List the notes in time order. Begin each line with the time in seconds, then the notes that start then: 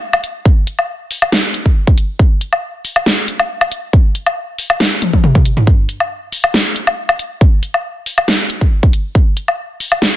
0.13 low woodblock
0.24 closed hi-hat
0.45 kick
0.67 closed hi-hat
0.79 low woodblock
1.11 open hi-hat
1.22 low woodblock
1.32 snare
1.54 closed hi-hat
1.66 kick
1.87 kick
1.98 closed hi-hat
2.19 kick
2.41 closed hi-hat
2.53 low woodblock
2.85 open hi-hat
2.96 low woodblock
3.06 snare
3.28 closed hi-hat
3.40 low woodblock
3.61 low woodblock
3.72 closed hi-hat
3.93 kick
4.15 closed hi-hat
4.26 closed hi-hat, low woodblock
4.59 open hi-hat
4.70 low woodblock
4.80 snare
5.02 closed hi-hat, high tom
5.13 kick, high tom
5.24 mid tom
5.35 kick, mid tom
5.45 closed hi-hat
5.57 mid tom
5.67 kick
5.89 closed hi-hat
6.00 low woodblock
6.32 open hi-hat
6.44 low woodblock
6.54 snare
6.76 closed hi-hat
6.87 low woodblock
7.09 low woodblock
7.19 closed hi-hat
7.41 kick
7.63 closed hi-hat
7.74 low woodblock
8.06 open hi-hat
8.18 low woodblock
8.28 snare
8.50 closed hi-hat
8.61 kick
8.83 kick
8.93 closed hi-hat
9.15 kick
9.37 closed hi-hat
9.48 low woodblock
9.80 open hi-hat
9.92 low woodblock
10.02 snare